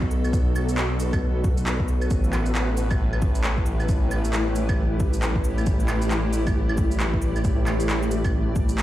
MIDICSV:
0, 0, Header, 1, 4, 480
1, 0, Start_track
1, 0, Tempo, 444444
1, 361, Time_signature, 4, 2, 24, 8
1, 9531, End_track
2, 0, Start_track
2, 0, Title_t, "Ambient pad"
2, 0, Program_c, 0, 92
2, 0, Note_on_c, 0, 59, 85
2, 0, Note_on_c, 0, 66, 77
2, 0, Note_on_c, 0, 69, 88
2, 0, Note_on_c, 0, 71, 85
2, 0, Note_on_c, 0, 74, 69
2, 2266, Note_on_c, 0, 57, 74
2, 2284, Note_off_c, 0, 74, 0
2, 2285, Note_off_c, 0, 66, 0
2, 2494, Note_on_c, 0, 64, 92
2, 2636, Note_on_c, 0, 67, 90
2, 3300, Note_on_c, 0, 74, 73
2, 3408, Note_off_c, 0, 59, 0
2, 3703, Note_off_c, 0, 69, 0
2, 9531, Note_off_c, 0, 57, 0
2, 9531, Note_off_c, 0, 64, 0
2, 9531, Note_off_c, 0, 67, 0
2, 9531, Note_off_c, 0, 71, 0
2, 9531, Note_off_c, 0, 74, 0
2, 9531, End_track
3, 0, Start_track
3, 0, Title_t, "Detuned saw bass"
3, 0, Program_c, 1, 39
3, 0, Note_on_c, 1, 35, 91
3, 2262, Note_off_c, 1, 35, 0
3, 2277, Note_on_c, 1, 33, 91
3, 9531, Note_off_c, 1, 33, 0
3, 9531, End_track
4, 0, Start_track
4, 0, Title_t, "Drums"
4, 24, Note_on_c, 9, 36, 64
4, 119, Note_on_c, 9, 69, 73
4, 132, Note_off_c, 9, 36, 0
4, 227, Note_off_c, 9, 69, 0
4, 264, Note_on_c, 9, 75, 36
4, 264, Note_on_c, 9, 82, 33
4, 359, Note_on_c, 9, 36, 122
4, 360, Note_off_c, 9, 82, 0
4, 360, Note_on_c, 9, 82, 57
4, 372, Note_off_c, 9, 75, 0
4, 467, Note_off_c, 9, 36, 0
4, 468, Note_off_c, 9, 82, 0
4, 601, Note_on_c, 9, 69, 73
4, 601, Note_on_c, 9, 75, 51
4, 709, Note_off_c, 9, 69, 0
4, 709, Note_off_c, 9, 75, 0
4, 744, Note_on_c, 9, 82, 56
4, 837, Note_off_c, 9, 82, 0
4, 837, Note_on_c, 9, 39, 112
4, 837, Note_on_c, 9, 82, 57
4, 945, Note_off_c, 9, 39, 0
4, 945, Note_off_c, 9, 82, 0
4, 1076, Note_on_c, 9, 69, 74
4, 1076, Note_on_c, 9, 82, 56
4, 1184, Note_off_c, 9, 69, 0
4, 1184, Note_off_c, 9, 82, 0
4, 1221, Note_on_c, 9, 75, 58
4, 1221, Note_on_c, 9, 82, 31
4, 1223, Note_on_c, 9, 36, 111
4, 1329, Note_off_c, 9, 75, 0
4, 1329, Note_off_c, 9, 82, 0
4, 1331, Note_off_c, 9, 36, 0
4, 1556, Note_on_c, 9, 69, 73
4, 1558, Note_on_c, 9, 36, 107
4, 1664, Note_off_c, 9, 69, 0
4, 1666, Note_off_c, 9, 36, 0
4, 1699, Note_on_c, 9, 82, 56
4, 1797, Note_off_c, 9, 82, 0
4, 1797, Note_on_c, 9, 39, 111
4, 1797, Note_on_c, 9, 82, 56
4, 1905, Note_off_c, 9, 39, 0
4, 1905, Note_off_c, 9, 82, 0
4, 1942, Note_on_c, 9, 36, 64
4, 2033, Note_on_c, 9, 69, 70
4, 2050, Note_off_c, 9, 36, 0
4, 2141, Note_off_c, 9, 69, 0
4, 2176, Note_on_c, 9, 75, 34
4, 2176, Note_on_c, 9, 82, 31
4, 2272, Note_off_c, 9, 82, 0
4, 2272, Note_on_c, 9, 82, 56
4, 2278, Note_on_c, 9, 36, 120
4, 2284, Note_off_c, 9, 75, 0
4, 2380, Note_off_c, 9, 82, 0
4, 2386, Note_off_c, 9, 36, 0
4, 2420, Note_on_c, 9, 69, 43
4, 2516, Note_off_c, 9, 69, 0
4, 2516, Note_on_c, 9, 39, 63
4, 2516, Note_on_c, 9, 69, 75
4, 2516, Note_on_c, 9, 75, 52
4, 2624, Note_off_c, 9, 39, 0
4, 2624, Note_off_c, 9, 69, 0
4, 2624, Note_off_c, 9, 75, 0
4, 2655, Note_on_c, 9, 82, 53
4, 2755, Note_off_c, 9, 82, 0
4, 2755, Note_on_c, 9, 39, 104
4, 2755, Note_on_c, 9, 82, 54
4, 2863, Note_off_c, 9, 39, 0
4, 2863, Note_off_c, 9, 82, 0
4, 2992, Note_on_c, 9, 69, 74
4, 2992, Note_on_c, 9, 82, 55
4, 3100, Note_off_c, 9, 69, 0
4, 3100, Note_off_c, 9, 82, 0
4, 3138, Note_on_c, 9, 75, 59
4, 3138, Note_on_c, 9, 82, 30
4, 3143, Note_on_c, 9, 36, 107
4, 3246, Note_off_c, 9, 75, 0
4, 3246, Note_off_c, 9, 82, 0
4, 3251, Note_off_c, 9, 36, 0
4, 3380, Note_on_c, 9, 75, 52
4, 3475, Note_on_c, 9, 69, 76
4, 3480, Note_on_c, 9, 36, 106
4, 3488, Note_off_c, 9, 75, 0
4, 3583, Note_off_c, 9, 69, 0
4, 3588, Note_off_c, 9, 36, 0
4, 3619, Note_on_c, 9, 82, 55
4, 3714, Note_off_c, 9, 82, 0
4, 3714, Note_on_c, 9, 39, 104
4, 3714, Note_on_c, 9, 82, 54
4, 3822, Note_off_c, 9, 39, 0
4, 3822, Note_off_c, 9, 82, 0
4, 3864, Note_on_c, 9, 36, 62
4, 3953, Note_on_c, 9, 69, 74
4, 3972, Note_off_c, 9, 36, 0
4, 4061, Note_off_c, 9, 69, 0
4, 4102, Note_on_c, 9, 75, 36
4, 4102, Note_on_c, 9, 82, 29
4, 4196, Note_off_c, 9, 82, 0
4, 4196, Note_on_c, 9, 82, 55
4, 4200, Note_on_c, 9, 36, 114
4, 4210, Note_off_c, 9, 75, 0
4, 4304, Note_off_c, 9, 82, 0
4, 4308, Note_off_c, 9, 36, 0
4, 4441, Note_on_c, 9, 69, 81
4, 4441, Note_on_c, 9, 75, 53
4, 4549, Note_off_c, 9, 69, 0
4, 4549, Note_off_c, 9, 75, 0
4, 4585, Note_on_c, 9, 82, 55
4, 4678, Note_off_c, 9, 82, 0
4, 4678, Note_on_c, 9, 39, 104
4, 4678, Note_on_c, 9, 82, 53
4, 4786, Note_off_c, 9, 39, 0
4, 4786, Note_off_c, 9, 82, 0
4, 4920, Note_on_c, 9, 69, 79
4, 4920, Note_on_c, 9, 82, 54
4, 5028, Note_off_c, 9, 69, 0
4, 5028, Note_off_c, 9, 82, 0
4, 5064, Note_on_c, 9, 75, 62
4, 5064, Note_on_c, 9, 82, 30
4, 5067, Note_on_c, 9, 36, 102
4, 5172, Note_off_c, 9, 75, 0
4, 5172, Note_off_c, 9, 82, 0
4, 5175, Note_off_c, 9, 36, 0
4, 5398, Note_on_c, 9, 69, 76
4, 5402, Note_on_c, 9, 36, 99
4, 5506, Note_off_c, 9, 69, 0
4, 5510, Note_off_c, 9, 36, 0
4, 5544, Note_on_c, 9, 82, 54
4, 5641, Note_off_c, 9, 82, 0
4, 5641, Note_on_c, 9, 39, 101
4, 5641, Note_on_c, 9, 82, 54
4, 5749, Note_off_c, 9, 39, 0
4, 5749, Note_off_c, 9, 82, 0
4, 5786, Note_on_c, 9, 36, 62
4, 5878, Note_on_c, 9, 69, 81
4, 5894, Note_off_c, 9, 36, 0
4, 5986, Note_off_c, 9, 69, 0
4, 6027, Note_on_c, 9, 75, 37
4, 6027, Note_on_c, 9, 82, 30
4, 6115, Note_off_c, 9, 82, 0
4, 6115, Note_on_c, 9, 82, 56
4, 6122, Note_on_c, 9, 36, 113
4, 6135, Note_off_c, 9, 75, 0
4, 6223, Note_off_c, 9, 82, 0
4, 6230, Note_off_c, 9, 36, 0
4, 6262, Note_on_c, 9, 69, 47
4, 6354, Note_off_c, 9, 69, 0
4, 6354, Note_on_c, 9, 39, 61
4, 6354, Note_on_c, 9, 69, 78
4, 6354, Note_on_c, 9, 75, 56
4, 6462, Note_off_c, 9, 39, 0
4, 6462, Note_off_c, 9, 69, 0
4, 6462, Note_off_c, 9, 75, 0
4, 6498, Note_on_c, 9, 82, 54
4, 6595, Note_off_c, 9, 82, 0
4, 6595, Note_on_c, 9, 39, 101
4, 6595, Note_on_c, 9, 82, 57
4, 6703, Note_off_c, 9, 39, 0
4, 6703, Note_off_c, 9, 82, 0
4, 6836, Note_on_c, 9, 69, 81
4, 6836, Note_on_c, 9, 82, 55
4, 6944, Note_off_c, 9, 69, 0
4, 6944, Note_off_c, 9, 82, 0
4, 6984, Note_on_c, 9, 75, 64
4, 6984, Note_on_c, 9, 82, 32
4, 6988, Note_on_c, 9, 36, 103
4, 7092, Note_off_c, 9, 75, 0
4, 7092, Note_off_c, 9, 82, 0
4, 7096, Note_off_c, 9, 36, 0
4, 7229, Note_on_c, 9, 75, 57
4, 7317, Note_on_c, 9, 69, 80
4, 7322, Note_on_c, 9, 36, 101
4, 7337, Note_off_c, 9, 75, 0
4, 7425, Note_off_c, 9, 69, 0
4, 7430, Note_off_c, 9, 36, 0
4, 7466, Note_on_c, 9, 82, 56
4, 7559, Note_off_c, 9, 82, 0
4, 7559, Note_on_c, 9, 39, 99
4, 7559, Note_on_c, 9, 82, 56
4, 7667, Note_off_c, 9, 39, 0
4, 7667, Note_off_c, 9, 82, 0
4, 7708, Note_on_c, 9, 36, 60
4, 7795, Note_on_c, 9, 69, 78
4, 7816, Note_off_c, 9, 36, 0
4, 7903, Note_off_c, 9, 69, 0
4, 7948, Note_on_c, 9, 75, 38
4, 7948, Note_on_c, 9, 82, 31
4, 8038, Note_off_c, 9, 82, 0
4, 8038, Note_on_c, 9, 82, 60
4, 8043, Note_on_c, 9, 36, 118
4, 8056, Note_off_c, 9, 75, 0
4, 8146, Note_off_c, 9, 82, 0
4, 8151, Note_off_c, 9, 36, 0
4, 8279, Note_on_c, 9, 39, 60
4, 8279, Note_on_c, 9, 69, 80
4, 8279, Note_on_c, 9, 75, 58
4, 8387, Note_off_c, 9, 39, 0
4, 8387, Note_off_c, 9, 69, 0
4, 8387, Note_off_c, 9, 75, 0
4, 8426, Note_on_c, 9, 82, 57
4, 8525, Note_off_c, 9, 82, 0
4, 8525, Note_on_c, 9, 39, 107
4, 8525, Note_on_c, 9, 82, 59
4, 8633, Note_off_c, 9, 39, 0
4, 8633, Note_off_c, 9, 82, 0
4, 8668, Note_on_c, 9, 69, 47
4, 8761, Note_off_c, 9, 69, 0
4, 8761, Note_on_c, 9, 69, 80
4, 8761, Note_on_c, 9, 82, 59
4, 8869, Note_off_c, 9, 69, 0
4, 8869, Note_off_c, 9, 82, 0
4, 8905, Note_on_c, 9, 75, 65
4, 8905, Note_on_c, 9, 82, 33
4, 8908, Note_on_c, 9, 36, 103
4, 9013, Note_off_c, 9, 75, 0
4, 9013, Note_off_c, 9, 82, 0
4, 9016, Note_off_c, 9, 36, 0
4, 9242, Note_on_c, 9, 69, 77
4, 9244, Note_on_c, 9, 36, 100
4, 9350, Note_off_c, 9, 69, 0
4, 9352, Note_off_c, 9, 36, 0
4, 9384, Note_on_c, 9, 82, 59
4, 9483, Note_off_c, 9, 82, 0
4, 9483, Note_on_c, 9, 39, 103
4, 9483, Note_on_c, 9, 82, 57
4, 9531, Note_off_c, 9, 39, 0
4, 9531, Note_off_c, 9, 82, 0
4, 9531, End_track
0, 0, End_of_file